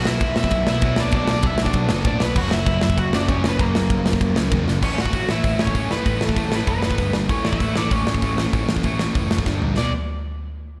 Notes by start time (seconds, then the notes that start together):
Already playing: B2 F#3 B3
0.05 B1 E4 E5, snare
0.21 B1, kick, ride
0.36 B2 E4 E5, snare
0.44 kick
0.51 B1, kick, ride
0.67 B1 B2 F#3 B3 E4 E5, snare
0.81 B1 B2 F#3 B3, kick, ride
0.96 B1 D4, snare
1.00 D5
1.11 B1 B2 F#3 D5, kick, ride
1.16 B3 D4
1.27 B1 D5, snare
1.32 D4
1.43 B1 E4 E5, kick, ride
1.58 snare
1.62 D4 D5, kick
1.73 B1, kick, ride
1.89 F#1 B2 F#3 B3, snare
2.04 A2 B2 F#3 B3 D4 D5, kick, ride
2.20 B1 B3 B4, snare
2.36 F#1 F#2 C#3 F#3 F#4 F#5, kick, crash
2.51 F#1 E4 E5, snare
2.66 F#1, kick, ride
2.81 F#2 E4 E5, snare
2.90 kick
2.98 F#1 F#4 F#5, kick, ride
3.12 F#1 F#2 C#3 F#3 D4 D5, snare
3.27 F#1 F#2 C#3 F#3 C#4 C#5, kick, ride
3.44 F#1, snare
3.49 B3 B4
3.58 F#1 F#2 C#3 F#3 A#3 A#4, kick, ride
3.75 F#1, snare
3.90 F#1, kick, ride
4.06 snare
4.13 kick
4.21 F#1, kick, ride
4.35 C#2 F#2 C#3 F#3, snare
4.51 E2 F#2 C#3 F#3, kick, ride
4.68 F#1, snare
4.83 A1 A2 E3 A3 C#4 C#5, kick, crash
4.98 A1 F#4 F#5, snare
5.05 kick
5.13 A1 A2 E3 A3, kick, open hi-hat
5.29 A1 A2 E3 A3 E4 E5, snare
5.44 A1 A2 E3 A3, kick, open hi-hat
5.59 A1 C#4 C#5, snare
5.67 kick
5.75 A1 A2 E3 A3, kick, open hi-hat
5.90 A2 E3 A3 B3 B4, snare
6.05 A1 A2 E3 A3, kick, open hi-hat
6.21 A1 A3 A4, snare
6.29 kick
6.36 A1 A2 E3 A3, kick, open hi-hat
6.52 A2 E3 A3 B3 B4, snare
6.67 F#1 A2 E3 A3 B3 B4, kick, open hi-hat
6.83 snare
6.91 kick
6.98 G1 G2 D3 G3, kick, open hi-hat
7.13 G1 G2 D3 G3, snare
7.29 A1 A2 E3 A3 C#4 C#5, kick, open hi-hat
7.45 A1 E4 E5, snare
7.53 kick
7.60 A1 A2 E3 A3, kick, open hi-hat
7.76 A1 A2 E3 A3 D4 D5, snare
7.91 A1 A2 E3 A3 C#4 C#5, kick, open hi-hat
8.07 A1, snare
8.14 kick
8.22 A1 A2 E3 A3, kick, open hi-hat
8.37 A2 E3 A3, snare
8.53 A1 A2 E3 A3, kick, open hi-hat
8.69 A1, snare
8.76 kick
8.83 A1 A2 E3 A3, kick, open hi-hat
8.99 A2 E3 A3, snare
9.15 F#1 A2 E3 A3, kick, open hi-hat
9.31 snare
9.38 kick
9.46 G1 G2 D3 G3, kick, snare
9.62 A#1 G2 D3 G3, floor tom
9.77 B1 B2 F#3 B3 D5, snare, crash